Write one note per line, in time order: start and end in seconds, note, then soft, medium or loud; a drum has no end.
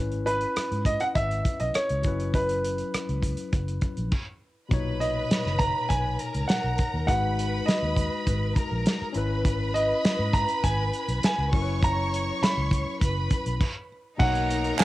0.00 0.44 G#1 medium
0.00 1.99 C#4 medium
0.00 2.00 E4 medium
0.00 2.05 B4 medium
0.12 closed hi-hat soft
0.26 0.82 B4 medium
0.26 closed hi-hat medium
0.41 closed hi-hat soft
0.56 muted fingered electric bass stroke soft
0.56 cross-stick loud
0.56 closed hi-hat medium
0.72 0.97 G#2 medium
0.72 closed hi-hat soft
0.85 1.01 D#5 medium
0.85 kick medium
0.85 closed hi-hat medium
1.00 1.06 F#5 medium
1.00 closed hi-hat soft
1.15 1.41 G#1 medium
1.15 1.61 E5 loud
1.15 kick medium
1.15 closed hi-hat medium
1.31 closed hi-hat soft
1.45 kick medium
1.45 closed hi-hat medium
1.60 1.73 B1 medium
1.60 1.75 D#5 medium
1.60 closed hi-hat medium
1.74 2.30 C#5 medium
1.74 cross-stick loud
1.74 closed hi-hat medium
1.89 2.03 C#2 medium
1.89 closed hi-hat soft
2.02 2.81 F#1 medium
2.02 4.07 F#3 medium
2.02 4.08 C#4 soft
2.02 4.08 E4 soft
2.02 kick medium
2.02 closed hi-hat medium
2.07 4.09 B4 medium
2.20 closed hi-hat soft
2.34 4.08 B4 medium
2.34 kick medium
2.34 closed hi-hat medium
2.49 closed hi-hat soft
2.65 closed hi-hat medium
2.78 closed hi-hat soft
2.94 muted fingered electric bass stroke soft
2.94 cross-stick loud
2.94 closed hi-hat loud
3.09 3.34 C#2 medium
3.09 closed hi-hat soft
3.22 kick medium
3.22 closed hi-hat medium
3.37 closed hi-hat medium
3.53 3.78 F#1 medium
3.53 kick medium
3.53 closed hi-hat medium
3.68 closed hi-hat soft
3.81 kick medium
3.81 closed hi-hat medium
3.97 4.10 A#1 medium
3.97 closed hi-hat soft
4.12 kick medium
4.12 crash medium
4.69 5.22 B1 medium
4.69 7.04 A#2 medium
4.69 7.03 B2 medium
4.69 7.05 D#4 medium
4.69 6.17 B4 medium
4.69 6.17 B5 medium
4.69 kick medium
4.69 closed hi-hat medium
4.74 7.05 C#5 medium
5.00 5.56 D#5 medium
5.00 closed hi-hat medium
5.31 muted fingered electric bass stroke soft
5.31 snare loud
5.31 closed hi-hat medium
5.46 5.71 F#1 medium
5.46 snare soft
5.59 5.90 A#5 loud
5.59 kick medium
5.59 closed hi-hat medium
5.89 6.16 B1 medium
5.89 6.50 G#5 medium
5.89 kick medium
5.89 closed hi-hat medium
6.19 7.07 A#4 medium
6.19 7.07 A#5 medium
6.19 closed hi-hat medium
6.34 6.47 C#2 medium
6.34 closed hi-hat soft
6.48 7.04 F#5 medium
6.48 snare loud
6.48 closed hi-hat medium
6.64 6.77 B1 medium
6.78 kick medium
6.78 closed hi-hat medium
6.94 7.06 D#2 medium
7.06 7.59 G#1 medium
7.06 9.11 G#3 medium
7.06 9.12 D#4 medium
7.06 9.12 F#4 medium
7.06 8.54 B4 medium
7.06 7.69 F#5 medium
7.06 8.54 B5 medium
7.06 kick medium
7.06 closed hi-hat medium
7.11 9.13 B4 medium
7.39 closed hi-hat medium
7.66 9.11 D#5 medium
7.66 muted fingered electric bass stroke soft
7.66 snare loud
7.66 closed hi-hat medium
7.82 8.08 D#2 medium
7.96 kick medium
7.96 closed hi-hat medium
8.27 8.52 G#1 medium
8.27 kick medium
8.27 closed hi-hat medium
8.56 9.15 A#4 medium
8.56 9.14 A#5 medium
8.56 kick medium
8.56 closed hi-hat medium
8.71 8.84 A#1 medium
8.86 snare loud
8.86 closed hi-hat medium
9.02 muted fingered electric bass stroke medium
9.13 9.92 G#1 medium
9.13 11.47 C#4 medium
9.13 11.49 E4 medium
9.13 11.48 B4 medium
9.13 11.48 B5 medium
9.13 closed hi-hat medium
9.18 11.50 B4 medium
9.45 kick loud
9.45 closed hi-hat medium
9.74 10.36 D#5 medium
9.74 closed hi-hat medium
10.05 muted fingered electric bass stroke soft
10.05 snare loud
10.05 closed hi-hat loud
10.19 10.45 G#2 medium
10.33 10.65 A#5 loud
10.33 kick medium
10.33 closed hi-hat medium
10.49 closed hi-hat medium
10.64 10.89 G#1 medium
10.64 11.19 G#5 medium
10.64 kick medium
10.64 closed hi-hat medium
10.93 closed hi-hat medium
11.08 11.21 B1 medium
11.08 closed hi-hat medium
11.23 11.85 G#5 medium
11.23 muted fingered electric bass stroke soft
11.23 snare loud
11.23 closed hi-hat medium
11.38 11.51 C#2 medium
11.51 12.30 F#1 medium
11.51 13.56 F#3 medium
11.51 13.56 C#4 medium
11.51 13.57 E4 medium
11.51 12.98 C#5 medium
11.51 12.98 C#6 medium
11.51 kick medium
11.51 open hi-hat soft
11.56 11.61 A#4 soft
11.62 13.61 B4 medium
11.83 12.44 A#5 loud
11.83 kick loud
11.83 closed hi-hat medium
12.14 closed hi-hat medium
12.42 13.87 B5 medium
12.42 muted fingered electric bass stroke soft
12.42 snare medium
12.42 closed hi-hat medium
12.57 12.83 C#2 medium
12.71 kick medium
12.71 closed hi-hat medium
13.01 13.27 F#1 medium
13.01 13.59 B4 medium
13.01 13.60 B5 medium
13.01 kick medium
13.01 closed hi-hat medium
13.31 kick medium
13.31 closed hi-hat medium
13.46 13.59 B1 medium
13.46 closed hi-hat soft
13.61 kick loud
13.61 crash medium
14.18 14.71 B1 loud
14.18 14.84 B2 medium
14.18 14.84 A#3 medium
14.18 14.84 D#4 medium
14.18 14.84 A#4 medium
14.18 14.75 F#5 medium
14.18 14.84 A#5 loud
14.18 kick medium
14.18 crash medium
14.22 14.84 C#5 medium
14.35 closed hi-hat soft
14.51 closed hi-hat medium
14.64 closed hi-hat soft
14.79 14.84 G#5 loud
14.79 muted fingered electric bass stroke soft
14.79 snare loud
14.79 clap medium